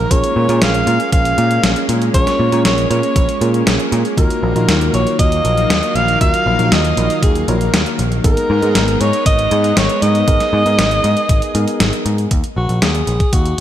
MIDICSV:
0, 0, Header, 1, 6, 480
1, 0, Start_track
1, 0, Key_signature, -6, "minor"
1, 0, Tempo, 508475
1, 103, Time_signature, 4, 2, 24, 8
1, 12841, End_track
2, 0, Start_track
2, 0, Title_t, "Alto saxophone"
2, 0, Program_c, 0, 65
2, 0, Note_on_c, 0, 70, 99
2, 104, Note_on_c, 0, 73, 108
2, 118, Note_off_c, 0, 70, 0
2, 587, Note_on_c, 0, 77, 109
2, 601, Note_off_c, 0, 73, 0
2, 1060, Note_off_c, 0, 77, 0
2, 1066, Note_on_c, 0, 77, 100
2, 1732, Note_off_c, 0, 77, 0
2, 2024, Note_on_c, 0, 73, 118
2, 2470, Note_off_c, 0, 73, 0
2, 2502, Note_on_c, 0, 73, 108
2, 2726, Note_off_c, 0, 73, 0
2, 2740, Note_on_c, 0, 73, 109
2, 3424, Note_off_c, 0, 73, 0
2, 3946, Note_on_c, 0, 70, 92
2, 4627, Note_off_c, 0, 70, 0
2, 4665, Note_on_c, 0, 73, 99
2, 4887, Note_off_c, 0, 73, 0
2, 4903, Note_on_c, 0, 75, 106
2, 5623, Note_on_c, 0, 77, 118
2, 5637, Note_off_c, 0, 75, 0
2, 5857, Note_off_c, 0, 77, 0
2, 5862, Note_on_c, 0, 77, 114
2, 6345, Note_on_c, 0, 75, 113
2, 6359, Note_off_c, 0, 77, 0
2, 6819, Note_off_c, 0, 75, 0
2, 6824, Note_on_c, 0, 68, 90
2, 7064, Note_on_c, 0, 70, 92
2, 7078, Note_off_c, 0, 68, 0
2, 7543, Note_off_c, 0, 70, 0
2, 7783, Note_on_c, 0, 70, 105
2, 8504, Note_on_c, 0, 73, 106
2, 8519, Note_off_c, 0, 70, 0
2, 8737, Note_off_c, 0, 73, 0
2, 8743, Note_on_c, 0, 75, 117
2, 9224, Note_on_c, 0, 73, 108
2, 9238, Note_off_c, 0, 75, 0
2, 9462, Note_on_c, 0, 75, 127
2, 9476, Note_off_c, 0, 73, 0
2, 11382, Note_off_c, 0, 75, 0
2, 11866, Note_on_c, 0, 66, 86
2, 12104, Note_on_c, 0, 68, 92
2, 12118, Note_off_c, 0, 66, 0
2, 12584, Note_on_c, 0, 66, 88
2, 12598, Note_off_c, 0, 68, 0
2, 12841, Note_off_c, 0, 66, 0
2, 12841, End_track
3, 0, Start_track
3, 0, Title_t, "Tine electric piano"
3, 0, Program_c, 1, 4
3, 103, Note_on_c, 1, 61, 84
3, 103, Note_on_c, 1, 65, 82
3, 103, Note_on_c, 1, 68, 79
3, 103, Note_on_c, 1, 70, 100
3, 434, Note_off_c, 1, 61, 0
3, 434, Note_off_c, 1, 65, 0
3, 434, Note_off_c, 1, 68, 0
3, 434, Note_off_c, 1, 70, 0
3, 463, Note_on_c, 1, 61, 98
3, 463, Note_on_c, 1, 65, 83
3, 464, Note_on_c, 1, 68, 88
3, 464, Note_on_c, 1, 70, 104
3, 1994, Note_off_c, 1, 61, 0
3, 1994, Note_off_c, 1, 65, 0
3, 1994, Note_off_c, 1, 68, 0
3, 1994, Note_off_c, 1, 70, 0
3, 2022, Note_on_c, 1, 61, 87
3, 2022, Note_on_c, 1, 70, 92
3, 2023, Note_on_c, 1, 65, 80
3, 2023, Note_on_c, 1, 68, 78
3, 2354, Note_off_c, 1, 61, 0
3, 2354, Note_off_c, 1, 65, 0
3, 2354, Note_off_c, 1, 68, 0
3, 2354, Note_off_c, 1, 70, 0
3, 2383, Note_on_c, 1, 61, 80
3, 2383, Note_on_c, 1, 65, 73
3, 2383, Note_on_c, 1, 68, 70
3, 2383, Note_on_c, 1, 70, 85
3, 3194, Note_off_c, 1, 61, 0
3, 3194, Note_off_c, 1, 65, 0
3, 3194, Note_off_c, 1, 68, 0
3, 3194, Note_off_c, 1, 70, 0
3, 3222, Note_on_c, 1, 61, 82
3, 3222, Note_on_c, 1, 68, 82
3, 3222, Note_on_c, 1, 70, 90
3, 3223, Note_on_c, 1, 65, 74
3, 3913, Note_off_c, 1, 68, 0
3, 3914, Note_off_c, 1, 61, 0
3, 3914, Note_off_c, 1, 65, 0
3, 3914, Note_off_c, 1, 70, 0
3, 3942, Note_on_c, 1, 66, 80
3, 3943, Note_on_c, 1, 63, 87
3, 3943, Note_on_c, 1, 65, 76
3, 3943, Note_on_c, 1, 70, 90
3, 4274, Note_off_c, 1, 63, 0
3, 4274, Note_off_c, 1, 65, 0
3, 4274, Note_off_c, 1, 66, 0
3, 4274, Note_off_c, 1, 70, 0
3, 4302, Note_on_c, 1, 63, 92
3, 4302, Note_on_c, 1, 66, 87
3, 4302, Note_on_c, 1, 70, 100
3, 4303, Note_on_c, 1, 65, 89
3, 5833, Note_off_c, 1, 70, 0
3, 5834, Note_off_c, 1, 63, 0
3, 5834, Note_off_c, 1, 65, 0
3, 5834, Note_off_c, 1, 66, 0
3, 5863, Note_on_c, 1, 63, 88
3, 5863, Note_on_c, 1, 65, 80
3, 5863, Note_on_c, 1, 66, 81
3, 5863, Note_on_c, 1, 70, 99
3, 6194, Note_off_c, 1, 63, 0
3, 6194, Note_off_c, 1, 65, 0
3, 6194, Note_off_c, 1, 66, 0
3, 6194, Note_off_c, 1, 70, 0
3, 6222, Note_on_c, 1, 63, 81
3, 6222, Note_on_c, 1, 65, 76
3, 6222, Note_on_c, 1, 66, 73
3, 6222, Note_on_c, 1, 70, 87
3, 7033, Note_off_c, 1, 66, 0
3, 7034, Note_off_c, 1, 63, 0
3, 7034, Note_off_c, 1, 65, 0
3, 7034, Note_off_c, 1, 70, 0
3, 7063, Note_on_c, 1, 63, 87
3, 7063, Note_on_c, 1, 65, 75
3, 7063, Note_on_c, 1, 66, 76
3, 7063, Note_on_c, 1, 73, 94
3, 7124, Note_off_c, 1, 63, 0
3, 7124, Note_off_c, 1, 65, 0
3, 7124, Note_off_c, 1, 66, 0
3, 7124, Note_off_c, 1, 73, 0
3, 7781, Note_on_c, 1, 59, 86
3, 7782, Note_on_c, 1, 63, 82
3, 7782, Note_on_c, 1, 68, 79
3, 7782, Note_on_c, 1, 70, 95
3, 8113, Note_off_c, 1, 59, 0
3, 8113, Note_off_c, 1, 68, 0
3, 8113, Note_off_c, 1, 70, 0
3, 8114, Note_off_c, 1, 63, 0
3, 8142, Note_on_c, 1, 59, 94
3, 8142, Note_on_c, 1, 63, 84
3, 8142, Note_on_c, 1, 68, 84
3, 8142, Note_on_c, 1, 70, 103
3, 9673, Note_off_c, 1, 59, 0
3, 9673, Note_off_c, 1, 68, 0
3, 9673, Note_off_c, 1, 70, 0
3, 9674, Note_off_c, 1, 63, 0
3, 9701, Note_on_c, 1, 68, 84
3, 9701, Note_on_c, 1, 70, 101
3, 9702, Note_on_c, 1, 59, 85
3, 9702, Note_on_c, 1, 63, 84
3, 10033, Note_off_c, 1, 59, 0
3, 10033, Note_off_c, 1, 63, 0
3, 10033, Note_off_c, 1, 68, 0
3, 10033, Note_off_c, 1, 70, 0
3, 10062, Note_on_c, 1, 59, 84
3, 10062, Note_on_c, 1, 63, 76
3, 10062, Note_on_c, 1, 68, 70
3, 10062, Note_on_c, 1, 70, 90
3, 10873, Note_off_c, 1, 59, 0
3, 10873, Note_off_c, 1, 63, 0
3, 10873, Note_off_c, 1, 68, 0
3, 10873, Note_off_c, 1, 70, 0
3, 10902, Note_on_c, 1, 59, 85
3, 10902, Note_on_c, 1, 63, 79
3, 10902, Note_on_c, 1, 68, 77
3, 10902, Note_on_c, 1, 70, 100
3, 11593, Note_off_c, 1, 59, 0
3, 11593, Note_off_c, 1, 63, 0
3, 11593, Note_off_c, 1, 68, 0
3, 11593, Note_off_c, 1, 70, 0
3, 12841, End_track
4, 0, Start_track
4, 0, Title_t, "Analog synth pad"
4, 0, Program_c, 2, 89
4, 106, Note_on_c, 2, 56, 81
4, 106, Note_on_c, 2, 58, 77
4, 106, Note_on_c, 2, 61, 90
4, 3906, Note_off_c, 2, 56, 0
4, 3906, Note_off_c, 2, 61, 0
4, 3943, Note_on_c, 2, 51, 81
4, 3943, Note_on_c, 2, 54, 96
4, 3943, Note_on_c, 2, 77, 76
4, 7745, Note_off_c, 2, 51, 0
4, 7745, Note_off_c, 2, 54, 0
4, 7745, Note_off_c, 2, 77, 0
4, 7746, Note_off_c, 2, 58, 0
4, 7783, Note_on_c, 2, 56, 80
4, 7783, Note_on_c, 2, 63, 74
4, 7783, Note_on_c, 2, 70, 74
4, 7784, Note_on_c, 2, 59, 92
4, 9683, Note_off_c, 2, 70, 0
4, 9702, Note_on_c, 2, 68, 73
4, 11585, Note_off_c, 2, 56, 0
4, 11585, Note_off_c, 2, 59, 0
4, 11585, Note_off_c, 2, 63, 0
4, 11603, Note_off_c, 2, 68, 0
4, 12841, End_track
5, 0, Start_track
5, 0, Title_t, "Picked electric bass"
5, 0, Program_c, 3, 34
5, 101, Note_on_c, 3, 34, 100
5, 195, Note_off_c, 3, 34, 0
5, 341, Note_on_c, 3, 46, 100
5, 435, Note_off_c, 3, 46, 0
5, 461, Note_on_c, 3, 46, 89
5, 555, Note_off_c, 3, 46, 0
5, 581, Note_on_c, 3, 34, 89
5, 769, Note_off_c, 3, 34, 0
5, 821, Note_on_c, 3, 46, 105
5, 915, Note_off_c, 3, 46, 0
5, 1061, Note_on_c, 3, 34, 77
5, 1249, Note_off_c, 3, 34, 0
5, 1302, Note_on_c, 3, 46, 102
5, 1489, Note_off_c, 3, 46, 0
5, 1543, Note_on_c, 3, 34, 99
5, 1636, Note_off_c, 3, 34, 0
5, 1782, Note_on_c, 3, 46, 81
5, 1969, Note_off_c, 3, 46, 0
5, 2021, Note_on_c, 3, 34, 94
5, 2115, Note_off_c, 3, 34, 0
5, 2261, Note_on_c, 3, 46, 102
5, 2355, Note_off_c, 3, 46, 0
5, 2382, Note_on_c, 3, 46, 91
5, 2476, Note_off_c, 3, 46, 0
5, 2503, Note_on_c, 3, 34, 88
5, 2690, Note_off_c, 3, 34, 0
5, 2742, Note_on_c, 3, 46, 107
5, 2836, Note_off_c, 3, 46, 0
5, 2981, Note_on_c, 3, 34, 100
5, 3075, Note_off_c, 3, 34, 0
5, 3221, Note_on_c, 3, 46, 96
5, 3409, Note_off_c, 3, 46, 0
5, 3461, Note_on_c, 3, 34, 101
5, 3555, Note_off_c, 3, 34, 0
5, 3702, Note_on_c, 3, 46, 101
5, 3796, Note_off_c, 3, 46, 0
5, 3942, Note_on_c, 3, 39, 96
5, 4035, Note_off_c, 3, 39, 0
5, 4181, Note_on_c, 3, 34, 101
5, 4275, Note_off_c, 3, 34, 0
5, 4300, Note_on_c, 3, 34, 85
5, 4395, Note_off_c, 3, 34, 0
5, 4420, Note_on_c, 3, 39, 91
5, 4608, Note_off_c, 3, 39, 0
5, 4659, Note_on_c, 3, 34, 104
5, 4754, Note_off_c, 3, 34, 0
5, 4901, Note_on_c, 3, 39, 81
5, 5089, Note_off_c, 3, 39, 0
5, 5140, Note_on_c, 3, 34, 98
5, 5328, Note_off_c, 3, 34, 0
5, 5380, Note_on_c, 3, 39, 98
5, 5475, Note_off_c, 3, 39, 0
5, 5620, Note_on_c, 3, 34, 83
5, 5808, Note_off_c, 3, 34, 0
5, 5861, Note_on_c, 3, 39, 104
5, 5955, Note_off_c, 3, 39, 0
5, 6100, Note_on_c, 3, 34, 104
5, 6195, Note_off_c, 3, 34, 0
5, 6221, Note_on_c, 3, 34, 90
5, 6315, Note_off_c, 3, 34, 0
5, 6340, Note_on_c, 3, 39, 90
5, 6528, Note_off_c, 3, 39, 0
5, 6581, Note_on_c, 3, 34, 111
5, 6675, Note_off_c, 3, 34, 0
5, 6821, Note_on_c, 3, 39, 84
5, 7009, Note_off_c, 3, 39, 0
5, 7062, Note_on_c, 3, 34, 98
5, 7249, Note_off_c, 3, 34, 0
5, 7301, Note_on_c, 3, 39, 98
5, 7395, Note_off_c, 3, 39, 0
5, 7543, Note_on_c, 3, 34, 86
5, 7730, Note_off_c, 3, 34, 0
5, 7781, Note_on_c, 3, 32, 99
5, 7875, Note_off_c, 3, 32, 0
5, 8022, Note_on_c, 3, 44, 103
5, 8116, Note_off_c, 3, 44, 0
5, 8143, Note_on_c, 3, 44, 93
5, 8236, Note_off_c, 3, 44, 0
5, 8263, Note_on_c, 3, 32, 96
5, 8450, Note_off_c, 3, 32, 0
5, 8503, Note_on_c, 3, 44, 105
5, 8596, Note_off_c, 3, 44, 0
5, 8740, Note_on_c, 3, 32, 87
5, 8928, Note_off_c, 3, 32, 0
5, 8982, Note_on_c, 3, 44, 103
5, 9169, Note_off_c, 3, 44, 0
5, 9221, Note_on_c, 3, 32, 106
5, 9315, Note_off_c, 3, 32, 0
5, 9462, Note_on_c, 3, 44, 83
5, 9649, Note_off_c, 3, 44, 0
5, 9701, Note_on_c, 3, 32, 98
5, 9795, Note_off_c, 3, 32, 0
5, 9940, Note_on_c, 3, 44, 104
5, 10035, Note_off_c, 3, 44, 0
5, 10180, Note_on_c, 3, 32, 88
5, 10368, Note_off_c, 3, 32, 0
5, 10420, Note_on_c, 3, 44, 106
5, 10515, Note_off_c, 3, 44, 0
5, 10661, Note_on_c, 3, 32, 78
5, 10755, Note_off_c, 3, 32, 0
5, 10901, Note_on_c, 3, 44, 97
5, 10995, Note_off_c, 3, 44, 0
5, 11140, Note_on_c, 3, 32, 97
5, 11235, Note_off_c, 3, 32, 0
5, 11381, Note_on_c, 3, 44, 83
5, 11568, Note_off_c, 3, 44, 0
5, 11621, Note_on_c, 3, 39, 97
5, 11715, Note_off_c, 3, 39, 0
5, 11861, Note_on_c, 3, 34, 96
5, 11955, Note_off_c, 3, 34, 0
5, 11981, Note_on_c, 3, 34, 84
5, 12075, Note_off_c, 3, 34, 0
5, 12102, Note_on_c, 3, 39, 85
5, 12289, Note_off_c, 3, 39, 0
5, 12341, Note_on_c, 3, 34, 99
5, 12435, Note_off_c, 3, 34, 0
5, 12581, Note_on_c, 3, 39, 75
5, 12769, Note_off_c, 3, 39, 0
5, 12841, End_track
6, 0, Start_track
6, 0, Title_t, "Drums"
6, 102, Note_on_c, 9, 36, 119
6, 103, Note_on_c, 9, 42, 96
6, 196, Note_off_c, 9, 36, 0
6, 198, Note_off_c, 9, 42, 0
6, 222, Note_on_c, 9, 42, 43
6, 317, Note_off_c, 9, 42, 0
6, 462, Note_on_c, 9, 42, 40
6, 557, Note_off_c, 9, 42, 0
6, 582, Note_on_c, 9, 38, 119
6, 582, Note_on_c, 9, 42, 89
6, 676, Note_off_c, 9, 38, 0
6, 676, Note_off_c, 9, 42, 0
6, 702, Note_on_c, 9, 42, 42
6, 797, Note_off_c, 9, 42, 0
6, 822, Note_on_c, 9, 42, 65
6, 916, Note_off_c, 9, 42, 0
6, 942, Note_on_c, 9, 42, 40
6, 1037, Note_off_c, 9, 42, 0
6, 1062, Note_on_c, 9, 36, 126
6, 1062, Note_on_c, 9, 42, 88
6, 1156, Note_off_c, 9, 36, 0
6, 1157, Note_off_c, 9, 42, 0
6, 1183, Note_on_c, 9, 42, 40
6, 1277, Note_off_c, 9, 42, 0
6, 1302, Note_on_c, 9, 42, 64
6, 1397, Note_off_c, 9, 42, 0
6, 1422, Note_on_c, 9, 42, 42
6, 1516, Note_off_c, 9, 42, 0
6, 1543, Note_on_c, 9, 38, 127
6, 1543, Note_on_c, 9, 42, 97
6, 1638, Note_off_c, 9, 38, 0
6, 1638, Note_off_c, 9, 42, 0
6, 1663, Note_on_c, 9, 42, 44
6, 1757, Note_off_c, 9, 42, 0
6, 1783, Note_on_c, 9, 42, 76
6, 1877, Note_off_c, 9, 42, 0
6, 1903, Note_on_c, 9, 42, 38
6, 1997, Note_off_c, 9, 42, 0
6, 2022, Note_on_c, 9, 36, 123
6, 2023, Note_on_c, 9, 42, 89
6, 2116, Note_off_c, 9, 36, 0
6, 2117, Note_off_c, 9, 42, 0
6, 2143, Note_on_c, 9, 38, 42
6, 2143, Note_on_c, 9, 42, 41
6, 2237, Note_off_c, 9, 38, 0
6, 2237, Note_off_c, 9, 42, 0
6, 2383, Note_on_c, 9, 42, 38
6, 2477, Note_off_c, 9, 42, 0
6, 2502, Note_on_c, 9, 38, 123
6, 2502, Note_on_c, 9, 42, 91
6, 2596, Note_off_c, 9, 38, 0
6, 2596, Note_off_c, 9, 42, 0
6, 2623, Note_on_c, 9, 42, 38
6, 2717, Note_off_c, 9, 42, 0
6, 2744, Note_on_c, 9, 42, 62
6, 2838, Note_off_c, 9, 42, 0
6, 2863, Note_on_c, 9, 42, 38
6, 2958, Note_off_c, 9, 42, 0
6, 2982, Note_on_c, 9, 36, 127
6, 2983, Note_on_c, 9, 42, 86
6, 3076, Note_off_c, 9, 36, 0
6, 3077, Note_off_c, 9, 42, 0
6, 3103, Note_on_c, 9, 42, 39
6, 3198, Note_off_c, 9, 42, 0
6, 3224, Note_on_c, 9, 42, 61
6, 3318, Note_off_c, 9, 42, 0
6, 3343, Note_on_c, 9, 42, 39
6, 3438, Note_off_c, 9, 42, 0
6, 3463, Note_on_c, 9, 38, 127
6, 3463, Note_on_c, 9, 42, 96
6, 3558, Note_off_c, 9, 38, 0
6, 3558, Note_off_c, 9, 42, 0
6, 3584, Note_on_c, 9, 42, 40
6, 3678, Note_off_c, 9, 42, 0
6, 3704, Note_on_c, 9, 42, 74
6, 3798, Note_off_c, 9, 42, 0
6, 3824, Note_on_c, 9, 42, 35
6, 3918, Note_off_c, 9, 42, 0
6, 3941, Note_on_c, 9, 36, 119
6, 3944, Note_on_c, 9, 42, 85
6, 4036, Note_off_c, 9, 36, 0
6, 4038, Note_off_c, 9, 42, 0
6, 4064, Note_on_c, 9, 42, 42
6, 4158, Note_off_c, 9, 42, 0
6, 4303, Note_on_c, 9, 42, 39
6, 4398, Note_off_c, 9, 42, 0
6, 4424, Note_on_c, 9, 38, 117
6, 4424, Note_on_c, 9, 42, 84
6, 4518, Note_off_c, 9, 38, 0
6, 4518, Note_off_c, 9, 42, 0
6, 4544, Note_on_c, 9, 42, 38
6, 4638, Note_off_c, 9, 42, 0
6, 4662, Note_on_c, 9, 42, 59
6, 4757, Note_off_c, 9, 42, 0
6, 4784, Note_on_c, 9, 42, 36
6, 4878, Note_off_c, 9, 42, 0
6, 4901, Note_on_c, 9, 36, 119
6, 4903, Note_on_c, 9, 42, 84
6, 4996, Note_off_c, 9, 36, 0
6, 4998, Note_off_c, 9, 42, 0
6, 5023, Note_on_c, 9, 42, 38
6, 5117, Note_off_c, 9, 42, 0
6, 5143, Note_on_c, 9, 42, 59
6, 5237, Note_off_c, 9, 42, 0
6, 5263, Note_on_c, 9, 42, 39
6, 5357, Note_off_c, 9, 42, 0
6, 5383, Note_on_c, 9, 38, 124
6, 5383, Note_on_c, 9, 42, 91
6, 5478, Note_off_c, 9, 38, 0
6, 5478, Note_off_c, 9, 42, 0
6, 5503, Note_on_c, 9, 42, 42
6, 5597, Note_off_c, 9, 42, 0
6, 5622, Note_on_c, 9, 42, 64
6, 5717, Note_off_c, 9, 42, 0
6, 5743, Note_on_c, 9, 42, 35
6, 5837, Note_off_c, 9, 42, 0
6, 5861, Note_on_c, 9, 36, 107
6, 5862, Note_on_c, 9, 42, 86
6, 5956, Note_off_c, 9, 36, 0
6, 5957, Note_off_c, 9, 42, 0
6, 5983, Note_on_c, 9, 42, 41
6, 6077, Note_off_c, 9, 42, 0
6, 6222, Note_on_c, 9, 42, 39
6, 6316, Note_off_c, 9, 42, 0
6, 6342, Note_on_c, 9, 38, 118
6, 6342, Note_on_c, 9, 42, 82
6, 6437, Note_off_c, 9, 38, 0
6, 6437, Note_off_c, 9, 42, 0
6, 6462, Note_on_c, 9, 42, 40
6, 6557, Note_off_c, 9, 42, 0
6, 6583, Note_on_c, 9, 42, 64
6, 6677, Note_off_c, 9, 42, 0
6, 6703, Note_on_c, 9, 42, 37
6, 6797, Note_off_c, 9, 42, 0
6, 6821, Note_on_c, 9, 36, 116
6, 6822, Note_on_c, 9, 42, 79
6, 6916, Note_off_c, 9, 36, 0
6, 6917, Note_off_c, 9, 42, 0
6, 6942, Note_on_c, 9, 42, 37
6, 7037, Note_off_c, 9, 42, 0
6, 7063, Note_on_c, 9, 42, 64
6, 7157, Note_off_c, 9, 42, 0
6, 7182, Note_on_c, 9, 42, 39
6, 7277, Note_off_c, 9, 42, 0
6, 7303, Note_on_c, 9, 38, 125
6, 7303, Note_on_c, 9, 42, 89
6, 7397, Note_off_c, 9, 38, 0
6, 7397, Note_off_c, 9, 42, 0
6, 7422, Note_on_c, 9, 42, 39
6, 7517, Note_off_c, 9, 42, 0
6, 7543, Note_on_c, 9, 42, 69
6, 7637, Note_off_c, 9, 42, 0
6, 7663, Note_on_c, 9, 42, 35
6, 7757, Note_off_c, 9, 42, 0
6, 7781, Note_on_c, 9, 36, 118
6, 7782, Note_on_c, 9, 42, 92
6, 7876, Note_off_c, 9, 36, 0
6, 7876, Note_off_c, 9, 42, 0
6, 7902, Note_on_c, 9, 42, 40
6, 7997, Note_off_c, 9, 42, 0
6, 8141, Note_on_c, 9, 42, 40
6, 8236, Note_off_c, 9, 42, 0
6, 8261, Note_on_c, 9, 38, 104
6, 8261, Note_on_c, 9, 42, 89
6, 8356, Note_off_c, 9, 38, 0
6, 8356, Note_off_c, 9, 42, 0
6, 8382, Note_on_c, 9, 42, 39
6, 8476, Note_off_c, 9, 42, 0
6, 8501, Note_on_c, 9, 42, 61
6, 8596, Note_off_c, 9, 42, 0
6, 8621, Note_on_c, 9, 42, 42
6, 8716, Note_off_c, 9, 42, 0
6, 8741, Note_on_c, 9, 36, 114
6, 8741, Note_on_c, 9, 42, 86
6, 8835, Note_off_c, 9, 36, 0
6, 8836, Note_off_c, 9, 42, 0
6, 8861, Note_on_c, 9, 42, 37
6, 8956, Note_off_c, 9, 42, 0
6, 8980, Note_on_c, 9, 42, 64
6, 9074, Note_off_c, 9, 42, 0
6, 9101, Note_on_c, 9, 42, 40
6, 9196, Note_off_c, 9, 42, 0
6, 9221, Note_on_c, 9, 38, 115
6, 9221, Note_on_c, 9, 42, 93
6, 9315, Note_off_c, 9, 38, 0
6, 9315, Note_off_c, 9, 42, 0
6, 9341, Note_on_c, 9, 42, 43
6, 9435, Note_off_c, 9, 42, 0
6, 9461, Note_on_c, 9, 42, 73
6, 9556, Note_off_c, 9, 42, 0
6, 9581, Note_on_c, 9, 42, 35
6, 9675, Note_off_c, 9, 42, 0
6, 9701, Note_on_c, 9, 36, 110
6, 9701, Note_on_c, 9, 42, 89
6, 9795, Note_off_c, 9, 36, 0
6, 9795, Note_off_c, 9, 42, 0
6, 9821, Note_on_c, 9, 38, 37
6, 9821, Note_on_c, 9, 42, 44
6, 9916, Note_off_c, 9, 38, 0
6, 9916, Note_off_c, 9, 42, 0
6, 10062, Note_on_c, 9, 42, 42
6, 10156, Note_off_c, 9, 42, 0
6, 10182, Note_on_c, 9, 38, 113
6, 10182, Note_on_c, 9, 42, 91
6, 10277, Note_off_c, 9, 38, 0
6, 10277, Note_off_c, 9, 42, 0
6, 10302, Note_on_c, 9, 42, 39
6, 10396, Note_off_c, 9, 42, 0
6, 10423, Note_on_c, 9, 42, 65
6, 10517, Note_off_c, 9, 42, 0
6, 10542, Note_on_c, 9, 42, 40
6, 10637, Note_off_c, 9, 42, 0
6, 10661, Note_on_c, 9, 36, 117
6, 10661, Note_on_c, 9, 42, 92
6, 10755, Note_off_c, 9, 36, 0
6, 10755, Note_off_c, 9, 42, 0
6, 10782, Note_on_c, 9, 42, 38
6, 10876, Note_off_c, 9, 42, 0
6, 10901, Note_on_c, 9, 42, 66
6, 10996, Note_off_c, 9, 42, 0
6, 11022, Note_on_c, 9, 42, 41
6, 11116, Note_off_c, 9, 42, 0
6, 11141, Note_on_c, 9, 38, 114
6, 11141, Note_on_c, 9, 42, 94
6, 11236, Note_off_c, 9, 38, 0
6, 11236, Note_off_c, 9, 42, 0
6, 11261, Note_on_c, 9, 42, 42
6, 11356, Note_off_c, 9, 42, 0
6, 11382, Note_on_c, 9, 42, 73
6, 11476, Note_off_c, 9, 42, 0
6, 11501, Note_on_c, 9, 42, 38
6, 11596, Note_off_c, 9, 42, 0
6, 11621, Note_on_c, 9, 42, 91
6, 11622, Note_on_c, 9, 36, 105
6, 11715, Note_off_c, 9, 42, 0
6, 11716, Note_off_c, 9, 36, 0
6, 11741, Note_on_c, 9, 42, 42
6, 11835, Note_off_c, 9, 42, 0
6, 11982, Note_on_c, 9, 42, 38
6, 12076, Note_off_c, 9, 42, 0
6, 12102, Note_on_c, 9, 38, 114
6, 12102, Note_on_c, 9, 42, 83
6, 12197, Note_off_c, 9, 38, 0
6, 12197, Note_off_c, 9, 42, 0
6, 12222, Note_on_c, 9, 42, 39
6, 12317, Note_off_c, 9, 42, 0
6, 12342, Note_on_c, 9, 42, 61
6, 12436, Note_off_c, 9, 42, 0
6, 12461, Note_on_c, 9, 42, 38
6, 12462, Note_on_c, 9, 36, 105
6, 12555, Note_off_c, 9, 42, 0
6, 12556, Note_off_c, 9, 36, 0
6, 12581, Note_on_c, 9, 42, 88
6, 12582, Note_on_c, 9, 36, 109
6, 12675, Note_off_c, 9, 42, 0
6, 12676, Note_off_c, 9, 36, 0
6, 12702, Note_on_c, 9, 42, 40
6, 12796, Note_off_c, 9, 42, 0
6, 12841, End_track
0, 0, End_of_file